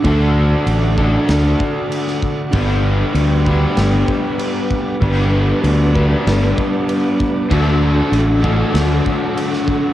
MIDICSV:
0, 0, Header, 1, 6, 480
1, 0, Start_track
1, 0, Key_signature, 2, "major"
1, 0, Tempo, 621118
1, 36, Time_signature, 4, 2, 24, 8
1, 7675, End_track
2, 0, Start_track
2, 0, Title_t, "Analog synth pad"
2, 0, Program_c, 0, 89
2, 0, Note_on_c, 0, 69, 83
2, 0, Note_on_c, 0, 78, 68
2, 0, Note_on_c, 0, 86, 83
2, 1924, Note_off_c, 0, 78, 0
2, 1925, Note_off_c, 0, 69, 0
2, 1925, Note_off_c, 0, 86, 0
2, 1949, Note_on_c, 0, 86, 80
2, 1955, Note_on_c, 0, 71, 84
2, 1955, Note_on_c, 0, 79, 65
2, 3858, Note_off_c, 0, 79, 0
2, 3871, Note_on_c, 0, 81, 70
2, 5768, Note_off_c, 0, 71, 0
2, 5776, Note_off_c, 0, 81, 0
2, 5788, Note_on_c, 0, 69, 80
2, 5789, Note_on_c, 0, 78, 71
2, 7675, Note_off_c, 0, 69, 0
2, 7675, Note_off_c, 0, 78, 0
2, 7675, Note_off_c, 0, 86, 0
2, 7675, End_track
3, 0, Start_track
3, 0, Title_t, "Overdriven electric guitar"
3, 0, Program_c, 1, 29
3, 39, Note_on_c, 1, 50, 83
3, 46, Note_on_c, 1, 62, 82
3, 50, Note_on_c, 1, 66, 78
3, 56, Note_on_c, 1, 69, 95
3, 743, Note_off_c, 1, 50, 0
3, 748, Note_off_c, 1, 66, 0
3, 751, Note_off_c, 1, 69, 0
3, 763, Note_on_c, 1, 69, 70
3, 770, Note_on_c, 1, 66, 66
3, 775, Note_off_c, 1, 62, 0
3, 778, Note_on_c, 1, 62, 71
3, 781, Note_on_c, 1, 50, 58
3, 1946, Note_off_c, 1, 69, 0
3, 1949, Note_off_c, 1, 66, 0
3, 1954, Note_off_c, 1, 50, 0
3, 1957, Note_on_c, 1, 55, 82
3, 1960, Note_off_c, 1, 62, 0
3, 1963, Note_on_c, 1, 62, 86
3, 1966, Note_on_c, 1, 59, 85
3, 1971, Note_on_c, 1, 71, 95
3, 2677, Note_off_c, 1, 71, 0
3, 2680, Note_on_c, 1, 71, 77
3, 2684, Note_off_c, 1, 59, 0
3, 2688, Note_off_c, 1, 62, 0
3, 2688, Note_on_c, 1, 59, 70
3, 2691, Note_on_c, 1, 62, 72
3, 2695, Note_off_c, 1, 55, 0
3, 2698, Note_on_c, 1, 55, 63
3, 3862, Note_off_c, 1, 55, 0
3, 3865, Note_off_c, 1, 71, 0
3, 3869, Note_off_c, 1, 59, 0
3, 3872, Note_on_c, 1, 55, 85
3, 3880, Note_off_c, 1, 62, 0
3, 3883, Note_on_c, 1, 62, 94
3, 3888, Note_on_c, 1, 59, 90
3, 3891, Note_on_c, 1, 71, 92
3, 4581, Note_off_c, 1, 55, 0
3, 4589, Note_off_c, 1, 59, 0
3, 4591, Note_off_c, 1, 71, 0
3, 4599, Note_on_c, 1, 71, 75
3, 4607, Note_on_c, 1, 59, 71
3, 4610, Note_off_c, 1, 62, 0
3, 4614, Note_on_c, 1, 62, 62
3, 4620, Note_on_c, 1, 55, 61
3, 5785, Note_off_c, 1, 71, 0
3, 5789, Note_off_c, 1, 59, 0
3, 5796, Note_off_c, 1, 55, 0
3, 5799, Note_on_c, 1, 50, 82
3, 5802, Note_off_c, 1, 62, 0
3, 5805, Note_on_c, 1, 62, 83
3, 5814, Note_on_c, 1, 66, 85
3, 5815, Note_on_c, 1, 69, 91
3, 6519, Note_off_c, 1, 69, 0
3, 6522, Note_on_c, 1, 69, 66
3, 6525, Note_off_c, 1, 66, 0
3, 6528, Note_on_c, 1, 66, 75
3, 6531, Note_off_c, 1, 62, 0
3, 6535, Note_on_c, 1, 62, 76
3, 6540, Note_off_c, 1, 50, 0
3, 6543, Note_on_c, 1, 50, 60
3, 7675, Note_off_c, 1, 50, 0
3, 7675, Note_off_c, 1, 62, 0
3, 7675, Note_off_c, 1, 66, 0
3, 7675, Note_off_c, 1, 69, 0
3, 7675, End_track
4, 0, Start_track
4, 0, Title_t, "Distorted electric guitar"
4, 0, Program_c, 2, 30
4, 5805, Note_on_c, 2, 54, 94
4, 5808, Note_on_c, 2, 57, 89
4, 7675, Note_off_c, 2, 54, 0
4, 7675, Note_off_c, 2, 57, 0
4, 7675, End_track
5, 0, Start_track
5, 0, Title_t, "Fingered electric bass"
5, 0, Program_c, 3, 33
5, 32, Note_on_c, 3, 38, 99
5, 420, Note_off_c, 3, 38, 0
5, 512, Note_on_c, 3, 33, 85
5, 900, Note_off_c, 3, 33, 0
5, 994, Note_on_c, 3, 38, 79
5, 1188, Note_off_c, 3, 38, 0
5, 1954, Note_on_c, 3, 31, 98
5, 2341, Note_off_c, 3, 31, 0
5, 2430, Note_on_c, 3, 38, 95
5, 2819, Note_off_c, 3, 38, 0
5, 2917, Note_on_c, 3, 31, 96
5, 3111, Note_off_c, 3, 31, 0
5, 3879, Note_on_c, 3, 31, 103
5, 4265, Note_off_c, 3, 31, 0
5, 4356, Note_on_c, 3, 38, 97
5, 4743, Note_off_c, 3, 38, 0
5, 4841, Note_on_c, 3, 31, 92
5, 5033, Note_off_c, 3, 31, 0
5, 5801, Note_on_c, 3, 38, 95
5, 6186, Note_off_c, 3, 38, 0
5, 6275, Note_on_c, 3, 33, 90
5, 6662, Note_off_c, 3, 33, 0
5, 6755, Note_on_c, 3, 38, 94
5, 6949, Note_off_c, 3, 38, 0
5, 7675, End_track
6, 0, Start_track
6, 0, Title_t, "Drums"
6, 35, Note_on_c, 9, 49, 54
6, 37, Note_on_c, 9, 36, 107
6, 113, Note_off_c, 9, 49, 0
6, 114, Note_off_c, 9, 36, 0
6, 515, Note_on_c, 9, 49, 54
6, 593, Note_off_c, 9, 49, 0
6, 756, Note_on_c, 9, 36, 79
6, 833, Note_off_c, 9, 36, 0
6, 994, Note_on_c, 9, 49, 54
6, 997, Note_on_c, 9, 38, 103
6, 1071, Note_off_c, 9, 49, 0
6, 1074, Note_off_c, 9, 38, 0
6, 1237, Note_on_c, 9, 36, 84
6, 1314, Note_off_c, 9, 36, 0
6, 1481, Note_on_c, 9, 49, 60
6, 1558, Note_off_c, 9, 49, 0
6, 1600, Note_on_c, 9, 38, 28
6, 1677, Note_off_c, 9, 38, 0
6, 1718, Note_on_c, 9, 36, 76
6, 1795, Note_off_c, 9, 36, 0
6, 1952, Note_on_c, 9, 49, 59
6, 1956, Note_on_c, 9, 36, 107
6, 2029, Note_off_c, 9, 49, 0
6, 2034, Note_off_c, 9, 36, 0
6, 2436, Note_on_c, 9, 49, 54
6, 2513, Note_off_c, 9, 49, 0
6, 2677, Note_on_c, 9, 36, 82
6, 2755, Note_off_c, 9, 36, 0
6, 2913, Note_on_c, 9, 49, 50
6, 2917, Note_on_c, 9, 38, 93
6, 2991, Note_off_c, 9, 49, 0
6, 2994, Note_off_c, 9, 38, 0
6, 3156, Note_on_c, 9, 36, 82
6, 3233, Note_off_c, 9, 36, 0
6, 3396, Note_on_c, 9, 49, 56
6, 3473, Note_off_c, 9, 49, 0
6, 3638, Note_on_c, 9, 36, 76
6, 3715, Note_off_c, 9, 36, 0
6, 3878, Note_on_c, 9, 49, 56
6, 3879, Note_on_c, 9, 36, 113
6, 3955, Note_off_c, 9, 49, 0
6, 3956, Note_off_c, 9, 36, 0
6, 4360, Note_on_c, 9, 49, 48
6, 4437, Note_off_c, 9, 49, 0
6, 4601, Note_on_c, 9, 36, 76
6, 4678, Note_off_c, 9, 36, 0
6, 4845, Note_on_c, 9, 49, 52
6, 4848, Note_on_c, 9, 38, 115
6, 4922, Note_off_c, 9, 49, 0
6, 4925, Note_off_c, 9, 38, 0
6, 5083, Note_on_c, 9, 36, 83
6, 5161, Note_off_c, 9, 36, 0
6, 5323, Note_on_c, 9, 49, 53
6, 5400, Note_off_c, 9, 49, 0
6, 5564, Note_on_c, 9, 36, 80
6, 5642, Note_off_c, 9, 36, 0
6, 5805, Note_on_c, 9, 36, 103
6, 5808, Note_on_c, 9, 49, 60
6, 5882, Note_off_c, 9, 36, 0
6, 5885, Note_off_c, 9, 49, 0
6, 6285, Note_on_c, 9, 49, 54
6, 6362, Note_off_c, 9, 49, 0
6, 6524, Note_on_c, 9, 36, 86
6, 6601, Note_off_c, 9, 36, 0
6, 6762, Note_on_c, 9, 49, 55
6, 6765, Note_on_c, 9, 38, 101
6, 6839, Note_off_c, 9, 49, 0
6, 6842, Note_off_c, 9, 38, 0
6, 7003, Note_on_c, 9, 36, 84
6, 7080, Note_off_c, 9, 36, 0
6, 7244, Note_on_c, 9, 49, 56
6, 7322, Note_off_c, 9, 49, 0
6, 7366, Note_on_c, 9, 38, 35
6, 7443, Note_off_c, 9, 38, 0
6, 7479, Note_on_c, 9, 36, 77
6, 7557, Note_off_c, 9, 36, 0
6, 7675, End_track
0, 0, End_of_file